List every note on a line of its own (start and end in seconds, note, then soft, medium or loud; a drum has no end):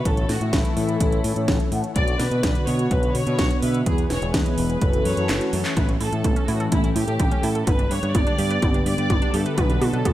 0.00 1.92 C#6 medium
0.05 0.24 A1 loud
0.05 1.94 E3 medium
0.05 1.94 A3 medium
0.05 0.38 C#4 medium
0.05 0.38 E4 medium
0.05 0.38 A4 medium
0.05 0.29 A4 medium
0.05 1.94 A4 medium
0.05 0.38 C#5 medium
0.05 kick loud
0.05 closed hi-hat medium
0.17 closed hi-hat soft
0.29 0.38 A2 medium
0.29 0.53 F#4 medium
0.29 snare medium
0.29 open hi-hat loud
0.41 0.50 A2 medium
0.41 0.74 C#4 medium
0.41 0.74 E4 medium
0.41 0.74 A4 medium
0.41 0.74 E5 medium
0.41 closed hi-hat soft
0.53 0.62 A1 medium
0.53 1.72 E4 medium
0.53 kick loud
0.53 snare loud
0.53 closed hi-hat medium
0.65 closed hi-hat soft
0.77 0.95 A2 loud
0.77 0.98 C#4 medium
0.77 0.98 E4 medium
0.77 0.98 A4 medium
0.77 0.98 C#5 medium
0.77 open hi-hat medium
0.89 closed hi-hat soft
1.00 1.19 A1 loud
1.00 1.33 C#4 medium
1.00 1.33 E4 medium
1.00 1.33 A4 medium
1.00 1.33 C#5 loud
1.00 kick loud
1.00 closed hi-hat medium
1.12 closed hi-hat soft
1.24 1.34 A2 loud
1.24 open hi-hat loud
1.36 1.45 A2 medium
1.36 1.69 C#4 medium
1.36 1.69 E4 medium
1.36 1.69 A4 medium
1.36 1.69 C#5 loud
1.36 closed hi-hat soft
1.48 1.57 A1 loud
1.48 kick loud
1.48 snare loud
1.48 closed hi-hat medium
1.60 closed hi-hat soft
1.72 1.81 A2 medium
1.72 1.93 C#4 medium
1.72 1.93 E4 medium
1.72 1.93 A4 medium
1.72 1.93 F#5 medium
1.72 open hi-hat medium
1.84 closed hi-hat soft
1.96 2.14 B1 loud
1.96 3.84 D3 medium
1.96 4.79 B3 medium
1.96 2.29 D4 medium
1.96 3.84 F#4 medium
1.96 2.29 F#4 medium
1.96 2.29 B4 medium
1.96 2.29 C#5 medium
1.96 2.18 D5 loud
1.96 kick loud
1.96 closed hi-hat medium
2.08 closed hi-hat soft
2.20 2.29 B2 medium
2.20 2.67 B4 loud
2.20 snare medium
2.20 open hi-hat loud
2.31 2.41 B2 medium
2.31 2.64 D4 medium
2.31 2.64 F#4 medium
2.31 2.64 B4 medium
2.31 2.64 D5 medium
2.31 closed hi-hat soft
2.43 2.53 B1 medium
2.43 kick loud
2.43 snare loud
2.43 closed hi-hat medium
2.55 closed hi-hat soft
2.67 2.86 B2 loud
2.67 2.88 D4 medium
2.67 2.88 F#4 medium
2.67 2.88 B4 medium
2.67 2.88 C#5 medium
2.67 2.91 C#5 loud
2.67 open hi-hat medium
2.79 closed hi-hat soft
2.91 3.10 B1 medium
2.91 3.24 D4 medium
2.91 3.24 F#4 medium
2.91 3.24 B4 medium
2.91 3.15 B4 loud
2.91 3.24 C#5 loud
2.91 kick loud
2.91 closed hi-hat medium
3.03 closed hi-hat soft
3.15 3.24 B2 medium
3.15 3.63 C#5 loud
3.15 open hi-hat loud
3.27 3.36 B2 medium
3.27 3.60 D4 medium
3.27 3.60 F#4 medium
3.27 3.60 B4 medium
3.27 3.60 C#5 loud
3.27 closed hi-hat soft
3.39 3.48 B1 medium
3.39 kick loud
3.39 snare loud
3.39 closed hi-hat loud
3.51 closed hi-hat soft
3.62 3.81 B2 medium
3.62 3.83 D4 medium
3.62 3.84 F#4 medium
3.62 3.83 B4 medium
3.62 3.85 B4 medium
3.62 3.84 E5 medium
3.62 open hi-hat loud
3.74 closed hi-hat soft
3.86 4.05 E2 loud
3.86 5.75 E3 medium
3.86 4.81 G#3 medium
3.86 4.19 B3 medium
3.86 4.19 E4 medium
3.86 4.81 G#4 medium
3.86 4.19 G#4 medium
3.86 4.09 G#4 medium
3.86 4.19 B4 medium
3.86 kick loud
3.86 closed hi-hat loud
3.98 closed hi-hat soft
4.10 4.19 E1 medium
4.10 4.32 C#5 loud
4.10 snare medium
4.10 open hi-hat loud
4.22 4.31 E1 medium
4.22 4.55 B3 medium
4.22 4.55 E4 medium
4.22 4.55 G#4 medium
4.22 4.55 C#5 medium
4.22 closed hi-hat soft
4.34 4.43 E2 medium
4.34 5.49 B4 medium
4.34 kick loud
4.34 snare loud
4.34 closed hi-hat loud
4.46 closed hi-hat soft
4.58 4.76 E1 loud
4.58 4.79 B3 medium
4.58 4.79 E4 medium
4.58 4.79 G#4 medium
4.58 4.79 B4 medium
4.58 open hi-hat medium
4.70 closed hi-hat soft
4.81 5.00 F#1 medium
4.81 5.76 A3 medium
4.81 5.76 C#4 medium
4.81 5.14 C#4 medium
4.81 5.14 E4 medium
4.81 5.14 F#4 medium
4.81 5.76 F#4 medium
4.81 5.14 A4 loud
4.81 kick loud
4.81 closed hi-hat loud
4.93 closed hi-hat soft
5.05 5.15 F#2 medium
5.05 5.50 C#5 loud
5.05 open hi-hat loud
5.17 5.26 F#2 medium
5.17 5.50 C#4 medium
5.17 5.50 E4 medium
5.17 5.50 F#4 medium
5.17 5.50 A4 loud
5.17 closed hi-hat soft
5.29 5.38 F#1 medium
5.29 snare loud
5.29 clap loud
5.29 closed hi-hat loud
5.41 closed hi-hat soft
5.53 5.62 F#2 medium
5.53 5.74 C#4 medium
5.53 5.74 E4 medium
5.53 5.74 F#4 medium
5.53 5.77 A4 medium
5.53 5.74 C#5 medium
5.53 open hi-hat medium
5.65 clap medium
5.65 closed hi-hat soft
5.77 5.95 A1 loud
5.77 7.65 E3 medium
5.77 5.88 A3 medium
5.77 7.65 A3 medium
5.77 6.10 C#4 medium
5.77 7.65 C#4 medium
5.77 6.10 E4 medium
5.77 7.65 A4 medium
5.77 6.10 A4 medium
5.77 5.87 B4 loud
5.77 6.10 C#5 medium
5.77 kick loud
5.77 closed hi-hat loud
5.77 mid tom soft
5.89 5.98 C#4 medium
5.89 closed hi-hat soft
6.00 6.10 A2 medium
6.00 6.09 E4 medium
6.00 6.45 A4 loud
6.00 open hi-hat loud
6.12 6.22 A2 medium
6.12 6.45 C#4 medium
6.12 6.45 E4 medium
6.12 6.18 A4 medium
6.12 6.45 A4 medium
6.12 6.45 E5 medium
6.12 closed hi-hat soft
6.24 6.34 A1 medium
6.24 6.33 A3 medium
6.24 kick loud
6.24 closed hi-hat loud
6.24 mid tom soft
6.36 6.45 C#4 loud
6.36 closed hi-hat soft
6.48 6.67 A2 loud
6.48 6.69 C#4 medium
6.48 6.69 E4 medium
6.48 6.57 E4 loud
6.48 6.72 F#4 medium
6.48 6.69 A4 medium
6.48 6.69 C#5 medium
6.48 open hi-hat medium
6.60 6.69 A4 loud
6.60 closed hi-hat soft
6.72 6.91 A1 medium
6.72 6.83 A3 medium
6.72 7.05 C#4 medium
6.72 7.05 E4 medium
6.72 6.94 E4 medium
6.72 7.05 A4 medium
6.72 7.05 C#5 loud
6.72 kick loud
6.72 closed hi-hat loud
6.72 mid tom medium
6.84 6.93 C#4 medium
6.84 closed hi-hat soft
6.96 7.05 A2 loud
6.96 7.05 E4 medium
6.96 7.40 G4 loud
6.96 open hi-hat loud
7.08 7.17 A2 medium
7.08 7.41 C#4 medium
7.08 7.41 E4 medium
7.08 7.41 A4 medium
7.08 7.13 A4 medium
7.08 7.41 C#5 loud
7.08 closed hi-hat soft
7.20 7.29 A1 loud
7.20 7.28 A3 medium
7.20 kick loud
7.20 closed hi-hat loud
7.20 mid tom medium
7.31 7.40 C#4 loud
7.31 closed hi-hat soft
7.43 7.62 A2 medium
7.43 7.64 C#4 medium
7.43 7.64 E4 medium
7.43 7.52 E4 loud
7.43 7.64 A4 medium
7.43 7.67 A4 loud
7.43 7.64 F#5 medium
7.43 open hi-hat medium
7.55 7.64 A4 loud
7.55 closed hi-hat soft
7.67 7.86 G1 loud
7.67 10.13 D3 medium
7.67 9.56 G3 medium
7.67 10.13 B3 medium
7.67 8.00 B3 medium
7.67 7.79 B3 medium
7.67 8.00 D4 medium
7.67 8.00 G4 medium
7.67 9.56 G4 medium
7.67 8.00 B4 medium
7.67 7.91 B4 loud
7.67 kick loud
7.67 closed hi-hat medium
7.67 mid tom medium
7.79 7.88 D4 medium
7.79 closed hi-hat soft
7.91 8.00 G2 medium
7.91 8.00 G4 medium
7.91 8.15 C#5 loud
7.91 open hi-hat loud
8.03 8.12 G2 medium
8.03 8.36 B3 medium
8.03 8.36 D4 medium
8.03 8.36 G4 medium
8.03 8.08 B4 medium
8.03 8.36 D5 medium
8.03 closed hi-hat soft
8.15 8.24 G1 medium
8.15 8.24 B3 medium
8.15 8.85 D5 loud
8.15 kick loud
8.15 closed hi-hat medium
8.15 mid tom medium
8.27 8.36 D4 loud
8.27 closed hi-hat soft
8.38 8.57 G2 loud
8.38 8.60 B3 medium
8.38 8.60 D4 medium
8.38 8.60 G4 medium
8.38 8.48 G4 loud
8.38 8.60 B4 medium
8.38 open hi-hat medium
8.50 8.59 B4 loud
8.50 closed hi-hat soft
8.62 8.81 G1 loud
8.62 8.95 B3 medium
8.62 8.74 B3 medium
8.62 8.95 D4 medium
8.62 8.95 G4 medium
8.62 8.95 B4 loud
8.62 kick loud
8.62 closed hi-hat medium
8.62 mid tom medium
8.74 8.83 D4 medium
8.74 closed hi-hat soft
8.86 8.95 G2 medium
8.86 8.95 G4 medium
8.86 9.31 D5 loud
8.86 open hi-hat loud
8.98 9.07 G2 medium
8.98 9.31 B3 medium
8.98 9.31 D4 medium
8.98 9.31 G4 medium
8.98 9.31 B4 loud
8.98 9.04 B4 medium
8.98 closed hi-hat soft
9.10 9.19 G1 medium
9.10 9.19 B3 medium
9.10 kick loud
9.10 closed hi-hat medium
9.10 mid tom medium
9.22 9.31 D4 loud
9.22 closed hi-hat soft
9.34 9.43 G2 medium
9.34 9.55 B3 medium
9.34 9.55 D4 medium
9.34 9.55 G4 medium
9.34 9.43 G4 loud
9.34 9.58 A4 loud
9.34 9.55 E5 medium
9.34 open hi-hat medium
9.46 9.55 B4 loud
9.46 closed hi-hat soft
9.58 9.76 B1 loud
9.58 10.13 F#3 medium
9.58 9.91 B3 medium
9.58 9.69 B3 medium
9.58 9.91 D4 medium
9.58 9.91 F#4 medium
9.58 10.13 F#4 medium
9.58 9.91 B4 medium
9.58 9.82 B4 loud
9.58 kick loud
9.58 closed hi-hat medium
9.58 mid tom medium
9.70 9.78 D4 medium
9.70 closed hi-hat soft
9.81 9.91 B2 medium
9.81 9.90 F#4 medium
9.81 10.13 A4 loud
9.81 open hi-hat loud
9.81 mid tom medium
9.93 10.03 B2 medium
9.93 10.13 B3 medium
9.93 10.13 D4 medium
9.93 10.13 F#4 medium
9.93 9.99 B4 medium
9.93 10.13 C#5 medium
9.93 closed hi-hat soft
10.05 10.13 B1 medium
10.05 10.13 B3 medium
10.05 kick loud
10.05 closed hi-hat medium
10.05 mid tom medium